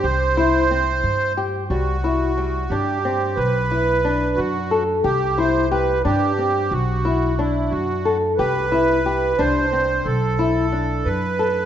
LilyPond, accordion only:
\new Staff \with { instrumentName = "Accordion" } { \time 5/8 \key c \lydian \tempo 4 = 90 c''2 r8 | fis'4. g'4 | b'4. fis'8. r16 | g'8 c''8 b'8 g'4 |
fis'4 e'8 fis'8. r16 | b'4. c''4 | a'4. b'4 | }